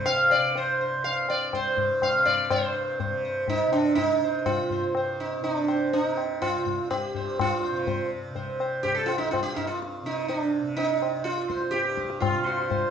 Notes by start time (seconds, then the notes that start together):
Already playing: C2 G2 C3
0.06 F5, tabla na
0.30 D5, tabla na
0.37 C3
0.55 C5, tabla tin
0.81 C5
0.96 C2
1.04 F5, tabla tin
1.29 D5, tabla na
1.53 G2 C5, tabla na, tabla ge
1.77 tabla ge
2.02 F5, tabla na, tabla ge
2.13 C3
2.25 D5, tabla ge
2.50 G2 C5, tabla na, tabla ge
2.74 C5
3.00 C5, tabla tin, tabla ge
3.09 C3
3.25 C5
3.48 D#4, tabla tin, tabla ge
3.67 C3
3.72 D4, tabla na
3.95 D#4, tabla tin, tabla ge
4.24 C2 C5
4.46 F4, tabla na, tabla ge
4.70 C5, tabla ge
4.83 G2
4.95 C5, tabla na
5.20 D#4
5.40 C3
5.44 D#4, tabla tin
5.55 D4
5.68 C5, tabla na
5.93 D4, tabla tin
5.99 C3
6.04 D#4
6.17 tabla na
6.42 F4, tabla na, tabla ge
6.56 C2
6.66 tabla ge
6.90 G4, tabla na, tabla ge
7.14 G2 C5, tabla ge
7.39 F4, tabla na, tabla ge
7.63 C5
7.71 C3
7.87 C5, tabla tin, tabla ge
8.30 C3
8.35 C5, tabla tin, tabla ge
8.60 C5, tabla na
8.83 G4, tabla tin, tabla ge
8.87 C2
8.95 A4
9.06 F4, tabla na
9.18 D#4, tabla ke
9.31 F4, tabla na, tabla ge
9.43 G2 G4
9.55 D#4 F4, tabla ge
9.67 F4
9.82 tabla te
10.03 C3 D#4, tabla te
10.28 D4, tabla tin
10.62 C3
10.77 D#4, tabla tin
11.02 tabla na
11.17 C2
11.24 F4, tabla te
11.38 tabla te
11.50 C5, tabla ke
11.62 tabla te
11.71 G2 G4, tabla te
11.85 tabla te
11.97 tabla ke
12.10 tabla te
12.20 F4, tabla na, tabla ge
12.31 C3
12.46 C5
12.70 C5, tabla tin, tabla ge